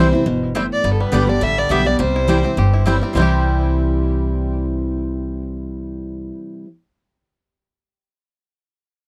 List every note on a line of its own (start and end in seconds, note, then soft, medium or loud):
0.00 0.11 C2 loud
0.00 0.24 C3 medium
0.00 0.12 E3 medium
0.00 0.13 G3 loud
0.00 0.13 C4 loud
0.00 0.11 E4 medium
0.00 0.38 C5 medium
0.13 0.27 C4 medium
0.13 0.26 E4 medium
0.26 0.68 G1 medium
0.26 0.54 B2 medium
0.55 0.83 A2 medium
0.55 0.63 G3 medium
0.55 0.65 C4 loud
0.55 0.63 C4 medium
0.55 0.65 E4 medium
0.55 0.63 E4 medium
0.55 0.65 C5 loud
0.55 0.65 G5 loud
0.73 0.92 D5 loud
0.84 1.05 G1 medium
0.84 1.39 G2 medium
0.84 1.26 B3 medium
0.93 1.03 A4 medium
1.00 1.42 G3 medium
1.00 1.31 B4 medium
1.12 1.37 G1 medium
1.12 1.27 D3 medium
1.12 1.55 D3 medium
1.12 1.28 G3 loud
1.12 1.22 B3 medium
1.12 1.28 B3 loud
1.12 1.22 G4 medium
1.12 1.26 G4 loud
1.12 1.23 D5 medium
1.12 1.23 G5 loud
1.27 1.42 B3 medium
1.27 1.69 D4 medium
1.27 1.41 G4 medium
1.27 1.45 D5 loud
1.41 1.66 A1 medium
1.41 1.68 D3 medium
1.41 1.71 G3 medium
1.41 1.60 E5 loud
1.58 1.98 B3 medium
1.58 1.72 D5 loud
1.69 1.95 B1 medium
1.69 1.85 D3 medium
1.69 1.85 G3 medium
1.69 1.99 G3 medium
1.69 1.80 B3 medium
1.69 1.86 B3 loud
1.69 1.80 G4 medium
1.69 1.84 G4 loud
1.69 1.81 D5 loud
1.69 1.88 E5 loud
1.69 1.81 G5 loud
1.85 2.00 B3 soft
1.85 2.00 D4 medium
1.85 1.98 G4 medium
1.85 2.00 D5 loud
1.99 2.42 C2 loud
1.99 2.54 C3 medium
1.99 2.41 G3 medium
1.99 2.83 C5 loud
2.16 2.55 E4 medium
2.28 2.43 E3 medium
2.28 2.43 G3 loud
2.28 2.38 C4 medium
2.28 2.44 C4 medium
2.28 2.38 E4 medium
2.28 2.42 E4 loud
2.28 2.57 G4 medium
2.28 2.39 C5 medium
2.28 2.39 G5 loud
2.43 2.84 C4 medium
2.43 2.58 C4 soft
2.43 2.57 E4 medium
2.57 2.99 G1 medium
2.57 3.12 G2 loud
2.57 2.99 G4 medium
2.74 3.13 E4 medium
2.86 3.01 E3 medium
2.86 3.01 G3 medium
2.86 3.14 G3 medium
2.86 2.96 C4 loud
2.86 3.02 C4 medium
2.86 2.96 E4 medium
2.86 3.00 E4 medium
2.86 2.96 C5 medium
2.86 2.96 G5 medium
3.01 3.16 C4 medium
3.01 3.16 C4 soft
3.01 3.15 E4 medium
3.13 6.30 C2 loud
3.13 6.64 C3 medium
3.13 6.65 E3 medium
3.13 6.30 G3 medium
3.13 6.66 G3 medium
3.13 6.63 C4 medium
3.13 6.67 C4 medium
3.13 6.65 E4 medium
3.13 6.66 C5 medium
3.13 6.67 G5 medium
3.17 6.32 C4 medium
3.17 6.67 E4 medium
3.17 6.34 E4 medium
3.22 6.36 G4 medium